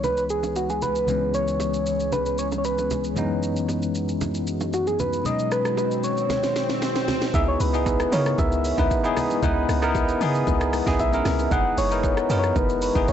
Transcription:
Already playing: tine electric piano C#2 E3 G#3 B3 D#4, ambient pad E3 G#3 B3 C#4 G#4
0.04 soft synth lead B4, high bongo, low bongo, low conga, shaker
0.17 soft synth lead B4, shaker
0.30 soft synth lead G#4, shaker
0.43 low bongo, shaker
0.56 soft synth lead F#4, high bongo, shaker
0.70 soft synth lead G#4, low bongo, shaker
0.82 soft synth lead B4, high bongo, low conga, shaker
0.96 shaker
1.07 tine electric piano C#2 E3 G#3 B3 C#4, low conga, shaker
1.34 soft synth lead C#5, shaker
1.48 shaker
1.60 high bongo, shaker
1.74 shaker
1.86 shaker
2.00 shaker
2.12 soft synth lead B4, high bongo, low bongo, low conga, shaker
2.26 soft synth lead B4, shaker
2.38 soft synth lead C#5, shaker
2.52 low bongo, shaker
2.58 soft synth lead C#5
2.65 soft synth lead B4, high bongo, shaker
2.78 low bongo, shaker
2.91 high bongo, low conga, shaker
3.04 shaker
3.15 tine electric piano F#2 E3 G#3 B3 C#4 D#4, ambient pad E3 D#4 F#4, low conga, shaker
3.43 shaker
3.56 shaker
3.69 high bongo, shaker
3.82 shaker
3.95 shaker
4.09 shaker
4.21 high bongo, low bongo, low conga, shaker
4.35 shaker
4.47 shaker
4.61 low bongo, shaker
4.73 soft synth lead F#4, high bongo, shaker
4.87 soft synth lead G#4, low bongo, shaker
4.99 soft synth lead B4, high bongo, low conga, shaker
5.13 shaker
5.24 tine electric piano B2 F#3 G#3 C#4 D#4, ambient pad D#3 C#4, soft synth lead D#5, swell, low conga, shaker
5.39 shaker
5.52 soft synth lead B4, cross-stick, shaker
5.65 cross-stick, shaker
5.77 soft synth lead B4, high bongo, shaker
5.91 shaker
6.04 soft synth lead C#5, shaker
6.17 shaker
6.30 snare, high bongo, low bongo, low conga, shaker
6.43 snare, shaker
6.56 snare, shaker
6.69 snare, low bongo, shaker
6.82 snare, high bongo, shaker
6.96 snare, low bongo, shaker
7.08 snare, high bongo, low conga, shaker
7.22 snare, low bongo, shaker
7.34 log drum bass C#2, ambient pad C#3 E3 G#3 B3 C#4, tine electric piano B3 D#4 E4 G#4, soft synth lead E5, kick, low conga, shaker
7.48 soft synth lead C#5
7.60 log drum bass C#2, soft synth lead B4, open hi-hat, shaker
7.73 tine electric piano B3 D#4 E4 G#4, shaker
7.86 kick, high bongo, shaker
8.00 cross-stick, shaker
8.12 log drum bass C#3, tine electric piano B3 D#4 E4 A#4, soft synth lead C#5, open hi-hat, shaker
8.26 cross-stick, shaker
8.38 log drum bass C#2, soft synth lead E5, kick, high bongo, low bongo, low conga, shaker
8.52 shaker
8.65 open hi-hat, shaker
8.78 log drum bass C#2, tine electric piano B3 D#4 E4 B4, kick, low bongo, shaker
8.91 kick, high bongo, shaker
9.04 tine electric piano B3 D#4 E4 G#4, shaker
9.17 cross-stick, open hi-hat, high bongo, low conga, shaker
9.30 low bongo, shaker
9.42 log drum bass C#2, tine electric piano B3 D#4 E4 B4, ambient pad C#4, kick, low conga, shaker
9.69 log drum bass C#2, cross-stick, open hi-hat, shaker
9.82 tine electric piano B3 D#4 E4 A#4, cross-stick, shaker
9.95 kick, high bongo, shaker
10.09 shaker
10.21 log drum bass C#3, tine electric piano B3 D#4 E4 G#4, open hi-hat, shaker
10.35 shaker
10.47 log drum bass C#2, kick, high bongo, low bongo, low conga, shaker
10.61 cross-stick, shaker
10.73 cross-stick, open hi-hat, shaker
10.86 log drum bass C#2, tine electric piano B3 D#4 E4 G#4, kick, snare, low bongo, shaker
10.99 log drum bass B1, soft synth lead E5, kick, high bongo, shaker
11.12 tine electric piano B3 C#4 E4 A#4, shaker
11.25 log drum bass C#2, cross-stick, snare, open hi-hat, high bongo, low conga, shaker
11.39 low bongo, shaker
11.51 log drum bass F#1, ambient pad E3 F#3 F#4, tine electric piano B3 D#4 E4 G#4, soft synth lead F#5, kick, low conga, shaker
11.78 log drum bass F#1, soft synth lead C#5, open hi-hat, shaker
11.91 tine electric piano B3 D#4 E4 A#4, shaker
12.03 kick, high bongo, shaker
12.17 cross-stick, shaker
12.29 log drum bass F#2, tine electric piano B3 D#4 E4 A#4, open hi-hat, shaker
12.39 soft synth lead C#5
12.43 cross-stick, shaker
12.56 log drum bass F#1, soft synth lead B4, kick, high bongo, low bongo, low conga, shaker
12.69 shaker
12.82 soft synth lead B4, open hi-hat, shaker
12.95 log drum bass F#1, tine electric piano B3 D#4 E4 G#4, kick, low bongo, shaker
13.08 soft synth lead C#5, kick, high bongo, shaker

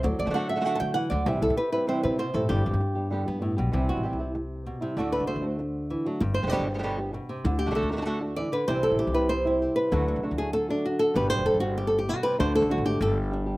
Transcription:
0.03 upright bass D2, nylon-string guitar F#3 A4 D5, muted nylon-string guitar stroke
0.19 upright bass D2, nylon-string guitar D5
0.25 nylon-string guitar D3 A3 D4 F#4, upright bass D3
0.30 nylon-string guitar D3 A3 D4 F#4 F#5
0.34 nylon-string guitar D3 A3 D4 F#4
0.49 nylon-string guitar A3 D4 F#4 E5
0.56 nylon-string guitar D3 A3 D4 F#4
0.61 nylon-string guitar D3 A3 D4 F#4 F#5
0.65 nylon-string guitar D3 A3 D4 F#4
0.75 nylon-string guitar A5
0.80 upright bass D3, nylon-string guitar A3 D4 F#4 G5
0.94 nylon-string guitar E3 F#5, muted nylon-string guitar stroke
1.10 upright bass D2, nylon-string guitar D3 D5
1.26 upright bass C2, nylon-string guitar C3 E3 G3 C4 E4 G4 E5
1.41 upright bass C2, nylon-string guitar G3 C4 E4 A4
1.50 upright bass C3
1.56 nylon-string guitar B4, muted nylon-string guitar stroke
1.72 nylon-string guitar G3 C4 E4 B4
1.87 nylon-string guitar C3 E3 G3 C4 E4 C5
2.03 upright bass C3, nylon-string guitar G3 C4 E4 B4
2.19 nylon-string guitar B2 C5, muted nylon-string guitar stroke
2.34 upright bass G#1, nylon-string guitar A2 G3 C4 E4 A4
2.49 upright bass G1, nylon-string guitar G2 D3 G3 B3 G4
2.64 upright bass G1, nylon-string guitar B3 G4
2.74 upright bass G2
2.80 muted nylon-string guitar stroke
2.95 nylon-string guitar G3 B3 G4
3.10 nylon-string guitar D3 G3 B3 G4
3.26 upright bass G2, nylon-string guitar G3 B3 G4
3.41 nylon-string guitar A2, muted nylon-string guitar stroke
3.56 upright bass B1, nylon-string guitar B2 G3 B3 G4
3.72 upright bass C2, nylon-string guitar C3 E3 G3 C4 E4
3.89 nylon-string guitar F#4
3.97 upright bass A1
4.03 nylon-string guitar E3 G3 C4 E4 G4
4.13 upright bass C2
4.19 nylon-string guitar G3 C4 E4
4.35 muted nylon-string guitar stroke
4.66 nylon-string guitar B2
4.81 nylon-string guitar C3 G3 C4 E4
4.97 upright bass D2, nylon-string guitar D3 A3 D4 F#4 D5
5.12 nylon-string guitar B4
5.20 upright bass C2
5.27 nylon-string guitar D3 A3 D4 F#4 C5
5.36 upright bass D2
5.42 nylon-string guitar A3 D4 F#4
5.59 muted nylon-string guitar stroke
5.90 nylon-string guitar E3
6.05 nylon-string guitar F#3 A3 D4 F#4
6.21 upright bass G1, nylon-string guitar G2, muted nylon-string guitar stroke
6.34 nylon-string guitar C5
6.42 upright bass E1, nylon-string guitar D3 G3 B3 G4
6.47 nylon-string guitar D3 G3 B3 G4 D5
6.51 nylon-string guitar B2 D3 G3 B3 G4
6.59 upright bass G1
6.67 nylon-string guitar G3 B3 G4
6.74 nylon-string guitar D3 G3 B3 G4
6.78 nylon-string guitar D3 G3 B3 G4
6.83 nylon-string guitar B2 D3 G3 B3 G4
6.98 nylon-string guitar G3 B3 G4
7.13 nylon-string guitar B2, muted nylon-string guitar stroke
7.29 nylon-string guitar C3
7.45 upright bass D2, nylon-string guitar D3, muted nylon-string guitar stroke
7.59 nylon-string guitar G4
7.66 upright bass C2, nylon-string guitar D3 A3 D4 F#4
7.71 nylon-string guitar D3 A3 D4 F#4
7.75 nylon-string guitar D3 A3 D4 F#4 A4
7.83 upright bass D2
7.90 nylon-string guitar D3 A3 D4 F#4 A#4
7.96 nylon-string guitar D3 A3 D4 F#4
8.01 nylon-string guitar D3 A3 D4 F#4
8.05 nylon-string guitar D3 A3 D4 F#4 A4
8.21 nylon-string guitar A3 D4 F#4
8.36 nylon-string guitar E3 D5, muted nylon-string guitar stroke
8.52 nylon-string guitar D3 B4
8.67 upright bass C2, nylon-string guitar C3 E3 G3 C4 E4 G4 C5
8.83 nylon-string guitar A4
8.91 upright bass A1
8.99 nylon-string guitar E3 G3 C4 E4 G4
9.07 upright bass C2
9.14 nylon-string guitar G3 C4 E4 B4
9.29 nylon-string guitar C5, muted nylon-string guitar stroke
9.45 nylon-string guitar G3 C4 E4
9.62 nylon-string guitar G4
9.76 nylon-string guitar B4
9.91 upright bass D2, nylon-string guitar D3 F#3 A3 D4 F#4
10.08 nylon-string guitar F#4
10.16 upright bass C2
10.23 nylon-string guitar D3 A3 D4 F#4
10.31 upright bass D2
10.38 nylon-string guitar A3 D4 F#4 G#4
10.53 nylon-string guitar A4, muted nylon-string guitar stroke
10.68 nylon-string guitar A3 D4 F#4
10.85 nylon-string guitar F#4
10.99 nylon-string guitar A4
11.14 upright bass G1, nylon-string guitar G2 B2 D3 G3 B3 G4 B4
11.30 nylon-string guitar C5
11.39 upright bass E1
11.46 nylon-string guitar D3 G3 B3 G4 A4
11.54 upright bass G1
11.60 nylon-string guitar G3 B3 F#4 G4
11.77 nylon-string guitar G4, muted nylon-string guitar stroke
11.87 nylon-string guitar A4
11.99 nylon-string guitar G4
12.08 nylon-string guitar B2 G3 B3 F#4 G4
12.23 nylon-string guitar C3 G3 B3 G4 B4
12.38 upright bass D2, nylon-string guitar D3 A3 D4 F#4 C5
12.55 nylon-string guitar A4
12.62 upright bass C2
12.69 nylon-string guitar D3 A3 D4 F#4
12.78 upright bass G#1
12.85 nylon-string guitar A3 D4 F#4 G4
13.01 upright bass G1, nylon-string guitar G2 G3 D4 A4, muted nylon-string guitar stroke
13.31 nylon-string guitar G3 D4 G4
13.46 nylon-string guitar G3 D4 G4

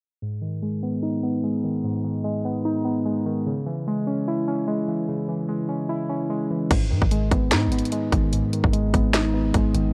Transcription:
0.22 synth keys G#2
0.42 synth keys D#3
0.62 synth keys G#3
0.83 synth keys B3
1.03 synth keys D#4
1.23 synth keys B3
1.44 synth keys G#3
1.64 synth keys D#3
1.84 synth keys G#2
2.04 synth keys D#3
2.24 synth keys G#3
2.45 synth keys B3
2.65 synth keys D#4
2.85 synth keys B3
3.05 synth keys G#3
3.26 synth keys D#3
3.46 synth keys C#3
3.66 synth keys E3
3.87 synth keys G#3
4.07 synth keys C#4
4.28 synth keys E4
4.48 synth keys C#4
4.68 synth keys G#3
4.88 synth keys E3
5.08 synth keys C#3
5.28 synth keys E3
5.49 synth keys G#3
5.69 synth keys C#4
5.89 synth keys E4
6.09 synth keys C#4
6.30 synth keys G#3
6.50 synth keys E3
6.71 808-style bass G#1, synth keys G#2, kick, closed hi-hat, crash
6.90 808-style bass G#2, synth keys D#3
7.02 808-style bass G#1, kick
7.11 synth keys G#3, closed hi-hat
7.31 808-style bass G#1, synth keys B3, kick, closed hi-hat
7.51 808-style bass G#2, synth keys D#4, finger snap, snare, closed hi-hat
7.67 808-style bass G#1
7.72 synth keys B3, closed hi-hat
7.79 closed hi-hat
7.85 closed hi-hat
7.92 synth keys G#3, closed hi-hat
8.12 808-style bass G#1, synth keys D#3, kick, closed hi-hat
8.33 synth keys G#2, closed hi-hat
8.53 synth keys D#3, closed hi-hat
8.64 808-style bass G#1, kick
8.73 synth keys G#3, closed hi-hat
8.94 808-style bass G#1, synth keys B3, kick, closed hi-hat
9.13 synth keys D#4, finger snap, snare, closed hi-hat
9.34 synth keys B3
9.54 808-style bass G#1, synth keys G#3, kick, closed hi-hat
9.74 808-style bass G#1, synth keys D#3, closed hi-hat

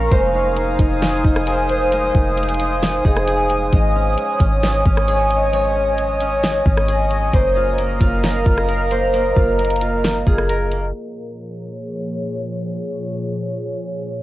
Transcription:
Already playing: harp A#3 C#4 A#4 C#5, ambient pad F5
0.12 808-style bass F1, harp G#3 C5, ambient pad C5 G#5 D#6, kick, closed hi-hat
0.34 harp D#4
0.57 harp G#3, closed hi-hat
0.79 808-style bass F1, harp D#4, kick, closed hi-hat
1.02 snare, closed hi-hat
1.25 808-style bass F1, harp D#4, kick
1.36 cross-stick
1.47 harp G#4 A#4, closed hi-hat
1.69 harp G#3 C5, closed hi-hat
1.92 harp G#3 A#4, closed hi-hat
2.14 808-style bass F1, harp D#4, kick
2.37 harp G#3, closed hi-hat
2.43 closed hi-hat
2.49 closed hi-hat
2.54 closed hi-hat
2.60 harp D#4, closed hi-hat
2.82 snare, closed hi-hat
3.05 808-style bass F1, harp D#4 G#4, kick
3.16 cross-stick
3.27 harp G#4, closed hi-hat
3.50 harp G#3, closed hi-hat
3.72 808-style bass G#1, harp G#3 D#5, ambient pad C#5 D#5, kick, closed hi-hat
3.95 harp C#4
4.18 harp G#3, closed hi-hat
4.40 808-style bass G#1, harp C#4, kick, closed hi-hat
4.63 snare, closed hi-hat
4.85 808-style bass G#1, harp C#4, kick
4.97 cross-stick
5.07 harp G#4 C#5, closed hi-hat
5.30 harp G#3 D#5, closed hi-hat
5.52 harp G#3 C#5, closed hi-hat
5.76 harp C#4
5.98 harp G#3, closed hi-hat
6.20 harp C#4, closed hi-hat
6.43 snare, closed hi-hat
6.66 808-style bass G#1, harp C#4, kick
6.77 cross-stick
6.88 harp G#4, closed hi-hat
7.11 harp G#3, closed hi-hat
7.33 808-style bass F#1, harp A#3 C5, ambient pad A#4 F5 A#5, kick, closed hi-hat
7.56 harp F4
7.78 harp A#3, closed hi-hat
8.01 808-style bass F#1, harp F4, kick, closed hi-hat
8.24 snare, closed hi-hat
8.46 808-style bass F#1, harp F4, kick
8.58 cross-stick
8.69 harp A#4, closed hi-hat
8.91 harp A#3 C5, closed hi-hat
9.13 harp A#3 A#4, closed hi-hat
9.36 808-style bass F#1, harp F4, kick
9.59 harp A#3, closed hi-hat
9.65 closed hi-hat
9.70 closed hi-hat
9.76 closed hi-hat
9.81 harp F4, closed hi-hat
10.04 snare, closed hi-hat
10.27 808-style bass F#1, harp F4 G#4, kick
10.38 cross-stick
10.49 harp A#4, closed hi-hat
10.72 harp A#3, closed hi-hat
10.94 ambient pad A#2 F3 G#4 C#5

